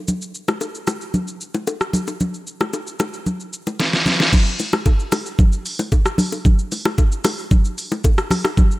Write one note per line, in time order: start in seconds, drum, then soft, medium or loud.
0.08 low conga medium
0.08 shaker medium
0.22 shaker soft
0.35 shaker medium
0.48 cross-stick medium
0.48 low bongo medium
0.48 shaker soft
0.61 high bongo medium
0.61 shaker medium
0.75 shaker medium
0.87 cross-stick medium
0.87 low bongo medium
0.87 shaker loud
1.01 shaker medium
1.14 low conga medium
1.14 shaker medium
1.28 shaker soft
1.41 shaker medium
1.54 low bongo medium
1.54 shaker soft
1.67 high bongo medium
1.67 shaker medium
1.81 cross-stick medium
1.81 shaker medium
1.93 low conga medium
1.93 shaker medium
2.07 high bongo medium
2.07 shaker medium
2.20 low conga medium
2.20 shaker medium
2.34 shaker medium
2.47 shaker medium
2.60 cross-stick medium
2.60 low bongo medium
2.60 shaker soft
2.73 high bongo medium
2.73 shaker medium
2.87 shaker medium
3.00 cross-stick medium
3.00 high bongo medium
3.00 low bongo medium
3.00 shaker loud
3.14 shaker medium
3.26 low conga medium
3.26 shaker medium
3.40 shaker soft
3.53 shaker medium
3.67 low bongo medium
3.67 shaker medium
3.79 snare medium
3.79 high bongo medium
3.79 shaker medium
3.93 snare medium
3.93 shaker medium
4.06 snare medium
4.06 low conga medium
4.06 shaker loud
4.20 snare medium
4.20 high bongo medium
4.20 shaker medium
4.33 kick loud
4.33 crash loud
4.33 low conga medium
4.33 shaker medium
4.47 shaker medium
4.59 open hi-hat soft
4.59 low bongo soft
4.59 shaker medium
4.73 cross-stick loud
4.73 low bongo medium
4.73 shaker soft
4.86 kick medium
4.86 high bongo medium
4.86 shaker medium
5.00 shaker medium
5.12 cross-stick medium
5.12 open hi-hat medium
5.12 high bongo medium
5.12 low bongo medium
5.12 shaker loud
5.26 shaker medium
5.39 kick loud
5.39 low conga medium
5.39 shaker medium
5.52 shaker soft
5.66 open hi-hat medium
5.66 shaker medium
5.79 low bongo medium
5.79 shaker medium
5.92 kick loud
5.92 high bongo medium
5.92 shaker medium
6.06 cross-stick loud
6.06 shaker medium
6.18 open hi-hat medium
6.18 low conga medium
6.18 shaker loud
6.32 high bongo medium
6.32 shaker medium
6.45 kick loud
6.45 low conga medium
6.45 shaker medium
6.59 shaker medium
6.72 open hi-hat medium
6.72 low bongo medium
6.72 shaker medium
6.85 cross-stick medium
6.85 low bongo medium
6.85 shaker medium
6.98 kick medium
6.98 high bongo medium
6.98 shaker medium
7.12 shaker medium
7.24 cross-stick medium
7.24 open hi-hat medium
7.24 high bongo medium
7.24 low bongo medium
7.24 shaker loud
7.38 shaker medium
7.51 kick loud
7.51 low conga medium
7.51 shaker medium
7.65 shaker medium
7.78 open hi-hat medium
7.78 shaker medium
7.91 low bongo medium
7.91 shaker medium
8.04 kick loud
8.04 high bongo medium
8.04 shaker medium
8.18 cross-stick loud
8.18 shaker medium
8.31 cross-stick medium
8.31 open hi-hat medium
8.31 low conga medium
8.31 shaker loud
8.45 cross-stick loud
8.45 high bongo medium
8.45 shaker medium
8.57 kick loud
8.57 low conga medium
8.57 shaker medium
8.71 shaker medium